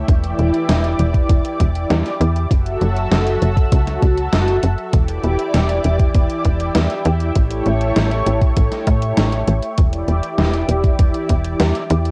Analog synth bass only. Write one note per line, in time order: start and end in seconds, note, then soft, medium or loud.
0.08 0.34 E1 loud
0.39 0.52 E1 medium
0.69 0.95 E1 medium
0.99 1.25 E1 medium
1.30 1.43 E1 medium
1.60 1.86 E1 loud
1.90 2.03 E2 medium
2.20 2.47 E2 loud
2.51 2.77 F#1 medium
2.81 3.07 F#1 medium
3.11 3.37 F#1 loud
3.42 3.68 F#1 medium
3.72 3.98 C#2 medium
4.02 4.28 C#2 medium
4.33 4.59 F#1 medium
4.63 4.76 F#1 medium
4.93 5.19 E1 loud
5.24 5.37 E1 medium
5.54 5.80 E1 medium
5.84 6.10 E1 medium
6.14 6.27 E1 medium
6.45 6.71 E1 loud
6.75 6.88 E2 loud
7.05 7.31 E2 medium
7.36 7.62 A1 medium
7.66 7.92 A1 medium
7.96 8.22 A1 loud
8.26 8.53 A1 medium
8.57 8.70 A1 medium
8.87 9.13 A2 medium
9.17 9.43 A1 medium
9.48 9.61 A1 medium
9.78 10.04 E1 loud
10.08 10.21 E1 medium
10.38 10.65 E1 medium
10.69 10.95 E1 medium
10.99 11.12 E1 medium
11.30 11.56 E1 loud
11.60 11.73 E2 loud
11.90 12.11 E2 medium